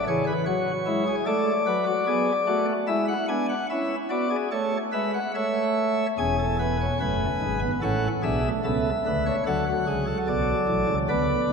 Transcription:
0.08 E3 G#4 C#5
0.27 B4
0.46 F#3 F#4 C#5
0.86 G#3 E4
1.07 G#4
1.26 A3 A4 D5
1.66 F#3 B4
1.86 F#4
2.06 B3 G#4
2.47 A3 F#4
2.87 G#3 E4 E5
3.08 F#5
3.28 B3 D4 G#5
3.49 F#5
3.70 C#4 E4 E5
4.10 B3 F#4 D5
4.30 G#4
4.51 A3 A4 C#5
4.92 G#3 B4 E5
5.13 F#5
5.35 A3 C#5 E5
6.18 E1 E2 C#4 G#4 G#5
6.39 A4
6.59 B3 B4
6.81 C#5
7.00 F#1 F#2 A3 B4
7.41 G#1 G#2 G#3
7.62 B3
7.82 A1 A2 C#4 A4 F#5
8.22 B1 B2 D4 G#4 E5
8.44 A3
8.64 C#2 C#3 B3 A4 E5
9.06 D2 D3 A3 B4
9.26 C#5
9.46 D2 D3 F#3 A4 F#5
9.68 F#4
9.87 C#2 C#3 G#4
10.07 A4
10.27 B1 B2 D5
10.68 A1 A2
10.89 C#2 C#3
11.09 D2 D3 B3 B4 D5
11.49 E2 E3

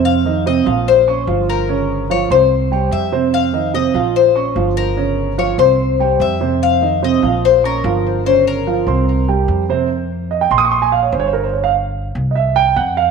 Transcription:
Already playing: F2 C3 C4 C5
0.05 F5
0.25 D#3 D#4 D#5
0.46 C3 C4 C5 D#5
0.66 A#1 F3 F4 F5
0.88 C5
1.07 C#4 C#5 C#6
1.27 G1 F3 F4 F5
1.50 A#4
1.69 C#3 C#4 C#5
2.10 F3 F4 C#5 F5
2.30 C2 C4 C5 C6
2.71 G3 G4 G5
2.91 F2 E5
3.12 C3 C4 C5
3.34 F5
3.53 D#3 D#4 D#5
3.74 C3 C4 C5 D#5
3.94 A#1 F3 F4 F5
4.16 C5
4.35 C#4 C#5 C#6
4.55 G1 F3 F4 F5
4.77 A#4
4.97 C#3 C#4 C#5
5.38 F3 F4 C#5 F5
5.58 C2 C4 C5 C6
5.99 G3 G4 G5
6.20 F2 E5
6.41 C3 C4 C5
6.63 F5
6.82 D#3 D#4 D#5
7.02 C3 C4 C5 D#5
7.22 A#1 F3 F4 F5
7.45 C5
7.64 C#4 A#4 C#5 C#6
7.84 G1 F3 F4 F5
8.26 C#3 C#4 C5 C#5
8.47 A#4
8.67 F3 F4 F5
8.87 C2 C4 C5 C6
9.28 G3 G4 G5
9.48 F2
9.69 C3 C4 C5
10.31 D#5
10.41 G5
10.51 A#1 C6
10.58 D#6
10.65 C#6
10.71 C6
10.82 G#5
10.92 F5
11.03 C#5
11.12 G1 C5
11.20 C#5
11.26 C5
11.33 A#4
11.44 C5
11.54 C#5
11.64 F5
12.15 C2
12.31 D#5
12.35 E5
12.56 G5
12.76 F2 F#5
12.97 F5

